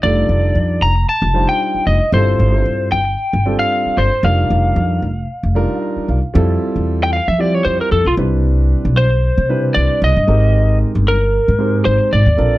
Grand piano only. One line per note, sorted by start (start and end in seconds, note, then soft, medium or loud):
0.03 0.85 G3 medium
0.03 0.85 D4 medium
0.03 0.85 D#4 medium
0.03 0.85 F4 medium
0.03 0.85 A4 medium
1.34 1.96 G3 medium
1.34 1.96 D4 medium
1.34 1.96 D#4 medium
1.34 1.96 F4 medium
1.34 1.96 C5 medium
2.13 2.95 G3 medium
2.13 2.95 C4 medium
2.13 2.95 E4 medium
2.13 2.95 F4 medium
2.13 2.95 A4 medium
3.46 4.07 G3 medium
3.46 4.07 C4 medium
3.46 4.07 D4 medium
3.46 4.07 F4 medium
3.46 4.07 A4 medium
4.24 5.05 G3 medium
4.24 5.05 D4 medium
4.24 5.05 D#4 medium
4.24 5.05 F4 medium
4.24 5.05 A#4 medium
5.55 6.17 G3 medium
5.55 6.17 D4 medium
5.55 6.17 D#4 medium
5.55 6.17 F4 medium
5.55 6.17 A#4 loud
5.82 6.06 A#5 medium
6.09 6.33 F5 medium
6.34 7.15 G3 medium
6.34 7.15 C4 medium
6.34 7.15 E4 medium
6.34 7.16 F4 medium
6.34 7.16 A4 loud
7.38 8.00 G3 medium
7.38 8.01 C4 medium
7.38 8.01 E4 medium
7.38 8.01 F4 medium
7.38 8.01 G4 medium
8.17 9.02 G3 medium
8.17 9.02 C4 medium
8.17 9.02 D4 medium
8.17 9.03 E4 medium
8.17 9.03 B4 medium
9.49 10.11 G3 medium
9.49 10.11 C4 medium
9.49 10.11 D4 medium
9.49 10.11 E4 medium
9.49 10.11 B4 medium
10.27 11.12 G#3 medium
10.27 11.12 C4 medium
10.27 11.13 D#4 medium
10.27 11.13 G4 medium
10.27 11.13 A#4 medium
11.59 12.20 G#3 medium
11.59 12.20 C4 medium
11.59 12.20 D#4 medium
11.59 12.21 G4 medium
11.59 12.21 C5 medium
12.37 12.58 C4 medium
12.37 12.58 D4 medium
12.37 12.58 F4 medium
12.37 12.58 A4 medium
12.37 12.58 A#4 medium